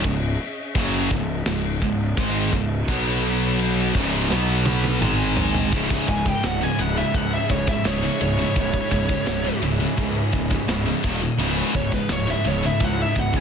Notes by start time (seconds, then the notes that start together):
Already playing: C#4 G#4 D#5 E5
0.04 C#1 C#2 G#2, kick, crash
0.75 F#1 F#2 C#3 F#3, kick, crash
1.11 C#1 C#2 G#2, kick
1.46 C#1 C#2 G#2, snare, crash
1.82 C#1 C#2 G#2, kick
2.17 G#1 G#2 D#3 G#3, kick, crash
2.53 C#1 C#2 G#2, kick
2.87 B1 B2 F#3 B3 F#4 C#5 B5, kick, crash
3.59 crash
3.94 C#1 C#2 G#2 C#3 C#4 G#4 D#5 E5, kick
4.30 B1 B2 F#3 B3 F#4 C#5 B5, snare
4.66 high tom
4.84 high tom
5.00 G#1 G#2 D#3 G#3 D#4 G#4 G#5, mid tom
5.37 floor tom
5.54 floor tom
5.71 C#1 C#2 G#2 C#3 G#3 C#4 E4 G#4 D#5 E5, kick, ride
5.90 kick
6.08 C#1 C#2 G#2 G#5, kick, ride
6.26 C#2 G#2 G5, kick
6.43 C#1 C#2 G#2 F#5, snare, ride
6.61 C#2 G#2 G#5
6.78 C#1 C#2 G#2 C#3 G#3 E4 F#5, ride
6.97 C#2 G#2 E5
7.14 C#2 G#2 F#5, kick, ride
7.33 E5
7.49 C#1 C#2 G#2 C#5, kick, ride
7.67 C#2 G#2 E5, kick
7.84 C#1 C#2 G#2 C#3 G#3 E4 C#5, snare, ride
8.03 C#2 G#2
8.21 C#1 C#2 G#2 C#5, ride
8.39 C#2 G#2
8.56 C#1 C#2 G#2 C#3 G#3 E4 C#5, kick, ride
8.74 kick
8.91 C#1 C#2 G#2, kick, ride
9.09 C#2 G#2, kick
9.26 C#1 C#2 G#2, snare, ride
9.45 C#2 G#2
9.61 C#1 C#2 G#2 C#3 G#3 E4, ride
9.80 C#2 G#2
9.97 C#2 G#2, kick, ride
10.32 C#1 C#2 G#2, kick, ride
10.50 C#2 G#2, kick
10.68 C#1 C#2 G#2 C#3 G#3 E4, snare, ride
10.86 C#2 G#2
11.03 D#1 D#2 A#2 D#3 A#3 D#5, kick, ride
11.21 D#2 A#2
11.38 C#1 C#2 G#2 C#3 G#3 E4, ride
11.74 C#1 C#2 G#2 C#5, kick, ride
11.92 C#2 G#2 B4, kick
12.09 C#1 C#2 G#2 C#5, snare, ride
12.27 C#2 G#2 E5
12.44 C#1 C#2 G#2 C#3 G#3 E4 C#5, ride
12.63 C#2 G#2 E5
12.80 C#2 G#2, kick, ride
12.84 F#5
13.02 E5
13.16 C#1 C#2 G#2 F#5, kick, ride
13.33 C#2 G#2 G#5, kick